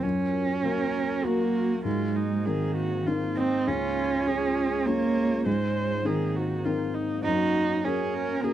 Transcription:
0.03 felt piano F#2, ambient pad F#3 F#4 A#4, cello C#4
0.64 felt piano A#3 F#4 A#4, viola A#4
1.24 felt piano A#3 F#4 A#4, cello A#3, viola F#4
1.85 felt piano G#2, cello G#3, ambient pad A#3 D#4 C5, viola F4
2.16 viola D#4
2.46 cello D#3, felt piano C4 D#4 A#4, viola G#4
2.76 viola F#4
3.07 felt piano C4 D#4 A#4, viola F4
3.37 cello C4, viola D#4
3.67 felt piano C#2, ambient pad G#3 F4 C#5, cello C#4, viola F4
4.27 felt piano C#4 F4 G#4, viola G#4
4.86 cello A#3, felt piano C#4 F4 G#4, viola C#5
5.46 felt piano G#2, cello G#3, ambient pad A#3 D#4 C5, viola C5
6.04 cello D#3, felt piano C4 D#4 A#4, viola G#4
6.36 viola F#4
6.65 felt piano C4 D#4 A#4, viola F4
6.95 viola D#4
7.24 felt piano F#2, ambient pad C#4 C#5, cello D#4, viola F#4
7.84 cello C#4, felt piano C#4 F#4 A#4, viola G#4
8.14 viola A#4
8.43 cello A#3, felt piano C#4 F#4 A#4, viola G#4

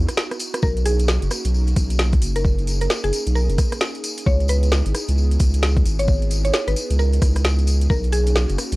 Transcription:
Already playing: analog synth pad B3 D#4 E4 F#4
0.08 cross-stick, closed hi-hat, tambourine
0.17 cross-stick, snare, tambourine
0.31 cross-stick, closed hi-hat, tambourine
0.39 open hi-hat, tambourine
0.54 cross-stick, closed hi-hat, tambourine
0.62 sub bass B1, analog synth pad A#3 C#4 D#4 F#4, synth pluck A#4, kick, tambourine
0.77 closed hi-hat, tambourine
0.85 synth pluck G#4, open hi-hat, tambourine
0.99 closed hi-hat, tambourine
1.08 snare, tambourine
1.22 sub bass F#1, closed hi-hat, tambourine
1.30 cross-stick, open hi-hat, tambourine
1.45 sub bass B1, closed hi-hat, tambourine
1.54 tambourine
1.67 closed hi-hat, tambourine
1.76 sub bass B1, kick, open hi-hat, tambourine
1.90 closed hi-hat, tambourine
1.99 snare, tambourine
2.12 kick, closed hi-hat, tambourine
2.22 sub bass F#1, open hi-hat, tambourine
2.36 synth pluck A#4, closed hi-hat, tambourine
2.45 analog synth pad G#4, kick, tambourine
2.58 closed hi-hat, tambourine
2.67 open hi-hat, tambourine
2.81 synth pluck A#4, closed hi-hat, tambourine
2.90 snare, tambourine
3.04 sub bass F#1, synth pluck G#4, closed hi-hat
3.13 open hi-hat, tambourine
3.27 sub bass B1, closed hi-hat, tambourine
3.35 synth pluck A#4, tambourine
3.49 sub bass F#1, closed hi-hat, tambourine
3.58 kick, cross-stick, open hi-hat, tambourine
3.72 cross-stick, closed hi-hat, tambourine
3.81 snare, tambourine
3.95 closed hi-hat, tambourine
4.04 open hi-hat, tambourine
4.18 closed hi-hat, tambourine
4.26 sub bass C#2, analog synth pad B3 D#4 E4, synth pluck C#5, kick, tambourine
4.40 closed hi-hat, tambourine
4.48 synth pluck B4, open hi-hat, tambourine
4.63 closed hi-hat, tambourine
4.72 snare, tambourine
4.86 sub bass G#1, closed hi-hat, tambourine
4.94 cross-stick, open hi-hat, tambourine
5.08 sub bass C#2, closed hi-hat, tambourine
5.18 tambourine
5.31 closed hi-hat, tambourine
5.40 sub bass C#2, kick, open hi-hat, tambourine
5.54 closed hi-hat, tambourine
5.63 snare, tambourine
5.77 kick, closed hi-hat
5.85 sub bass G#1, open hi-hat, tambourine
5.99 synth pluck C#5, closed hi-hat, tambourine
6.08 kick, tambourine
6.22 closed hi-hat, tambourine
6.31 open hi-hat, tambourine
6.45 synth pluck C#5, closed hi-hat, tambourine
6.53 snare, tambourine
6.67 sub bass G#1, synth pluck B4, closed hi-hat, tambourine
6.76 open hi-hat, tambourine
6.90 sub bass C#2, closed hi-hat, tambourine
6.99 synth pluck A#4, tambourine
7.12 closed hi-hat, tambourine
7.22 sub bass C#2, kick, cross-stick, open hi-hat, tambourine
7.35 cross-stick, closed hi-hat, tambourine
7.44 snare, tambourine
7.59 closed hi-hat, tambourine
7.67 open hi-hat, tambourine
7.81 closed hi-hat, tambourine
7.90 sub bass B1, analog synth pad A#3 C#4 F#4, synth pluck A#4, kick, tambourine
8.03 closed hi-hat, tambourine
8.12 synth pluck G#4, open hi-hat, tambourine
8.26 closed hi-hat, tambourine
8.36 snare, tambourine
8.49 sub bass F#1, closed hi-hat, tambourine
8.58 cross-stick, open hi-hat, tambourine
8.72 sub bass B1, closed hi-hat, tambourine

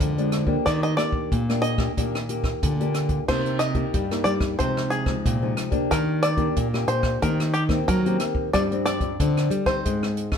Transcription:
Already playing: nylon-string guitar F3 G#3 D4, five-string banjo A#4
0.00 nylon-string guitar F2 D3, kick, closed hi-hat
0.18 nylon-string guitar F3 G#3 D4, closed hi-hat
0.32 cross-stick, closed hi-hat
0.46 nylon-string guitar A#3 D4 G4, kick
0.66 nylon-string guitar D#3, five-string banjo D5, kick, cross-stick, closed hi-hat
0.83 five-string banjo D#5, closed hi-hat
0.97 nylon-string guitar A#3 D4 G4, five-string banjo D5, cross-stick, closed hi-hat
1.12 kick
1.32 nylon-string guitar A#2, kick, closed hi-hat
1.49 nylon-string guitar A#3 D4 G4, cross-stick, closed hi-hat
1.62 five-string banjo D#5, closed hi-hat
1.78 nylon-string guitar A#3 D4 G4, kick, cross-stick
1.97 nylon-string guitar A#2 D#3 A#3 D4 G4, kick, closed hi-hat
2.15 cross-stick, closed hi-hat
2.29 nylon-string guitar A#3 G4, closed hi-hat
2.44 kick, cross-stick
2.63 nylon-string guitar A#2 D3, kick, closed hi-hat
2.80 nylon-string guitar A#3 D4 G4, closed hi-hat
2.94 cross-stick, closed hi-hat
3.09 kick, closed hi-hat
3.28 nylon-string guitar C3 A#3 D#4 G4, five-string banjo C5, kick, cross-stick, crash
3.46 closed hi-hat
3.59 five-string banjo D#5, cross-stick, closed hi-hat
3.74 nylon-string guitar A#3 D#4 G4, kick, closed hi-hat
3.94 nylon-string guitar G2 G3, kick, closed hi-hat
4.11 nylon-string guitar A#3 D#4 G4, cross-stick, closed hi-hat
4.24 nylon-string guitar G3, five-string banjo D5, closed hi-hat
4.40 kick, cross-stick
4.59 nylon-string guitar C3 F3 G#3 D#4, five-string banjo C5, kick, closed hi-hat
4.77 cross-stick
4.90 five-string banjo G#4, closed hi-hat
5.06 nylon-string guitar F3 G#3 D#4, kick, cross-stick
5.25 nylon-string guitar A#2 C3, kick, closed hi-hat
5.42 nylon-string guitar F3 G#3 D#4
5.57 cross-stick, closed hi-hat
5.71 nylon-string guitar A#3 D4 G4, kick, closed hi-hat
5.91 nylon-string guitar D#3, five-string banjo A#4, kick, cross-stick, closed hi-hat
6.23 five-string banjo D5, cross-stick, closed hi-hat
6.37 nylon-string guitar A#3 D4 G4, kick, closed hi-hat
6.56 nylon-string guitar A#2, kick, closed hi-hat
6.73 nylon-string guitar A#3 D4 G4, cross-stick
6.88 nylon-string guitar A#2, five-string banjo C5, closed hi-hat
7.03 kick, cross-stick
7.22 nylon-string guitar D#3 A#3 C4 G4, five-string banjo A#4, kick, closed hi-hat
7.40 cross-stick, closed hi-hat
7.54 five-string banjo G4, closed hi-hat
7.68 nylon-string guitar A#3 C4 G4, kick, cross-stick
7.88 nylon-string guitar D#3 F#3, five-string banjo A#4, kick, closed hi-hat
8.05 nylon-string guitar A#3 C4 G4, closed hi-hat
8.20 cross-stick, closed hi-hat
8.35 kick
8.53 nylon-string guitar G2 F3 G3 C4 D4, five-string banjo D5, kick, cross-stick, closed hi-hat
8.71 nylon-string guitar F3 C4 D4, closed hi-hat
8.86 five-string banjo D5, cross-stick, closed hi-hat
9.00 nylon-string guitar F3 C4 D4, kick, closed hi-hat
9.19 nylon-string guitar D3 F3 C4 D4, kick, closed hi-hat
9.37 cross-stick, closed hi-hat
9.50 nylon-string guitar G3, closed hi-hat
9.66 nylon-string guitar C4 D#4, five-string banjo C5, kick, cross-stick
9.85 nylon-string guitar G#2 G#3, kick, closed hi-hat
10.03 cross-stick
10.17 closed hi-hat
10.32 kick, cross-stick

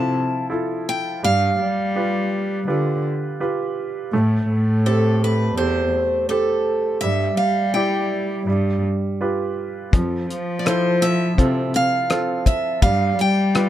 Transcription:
Already playing: cello C3, grand piano F3 E4 F4 A4, steel-string acoustic guitar A5
0.50 grand piano E4 F4 A4
0.89 steel-string acoustic guitar G5
1.23 cello G2, grand piano G3, steel-string acoustic guitar F5
1.60 cello G3
1.95 grand piano F4 G4 B4
2.68 cello D3, grand piano F4 G4 B4
3.40 grand piano F4 G4 B4
4.13 cello A2, grand piano A3
4.49 cello A2
4.86 grand piano C4 G4 A4, steel-string acoustic guitar A4
5.24 steel-string acoustic guitar B4
5.56 cello E2, grand piano G4 A4 C5, steel-string acoustic guitar C5
6.29 grand piano G4 A4 C5, steel-string acoustic guitar A4
7.01 cello G2, grand piano G3, steel-string acoustic guitar E5
7.37 cello G3, steel-string acoustic guitar F5
7.74 grand piano E4 G4 D5, steel-string acoustic guitar G5
8.47 cello G2, grand piano G3
9.21 grand piano F4 G4 B4
9.93 cello F2, grand piano F3, kick, closed hi-hat
10.30 cello F3, closed hi-hat
10.59 steel-string acoustic guitar D5
10.65 grand piano E4 F4 A4, steel-string acoustic guitar C5, cross-stick, closed hi-hat
11.02 steel-string acoustic guitar E5, closed hi-hat
11.38 cello C3, grand piano C4 F4 A4, kick, closed hi-hat
11.74 steel-string acoustic guitar F5, closed hi-hat
12.10 grand piano C4 F4 A4, cross-stick, closed hi-hat
12.46 steel-string acoustic guitar E5, kick, closed hi-hat
12.82 cello G2, grand piano G3, steel-string acoustic guitar F5, kick, closed hi-hat
13.18 cello G3, steel-string acoustic guitar G5, closed hi-hat
13.54 grand piano F4 G4 B4, cross-stick, closed hi-hat

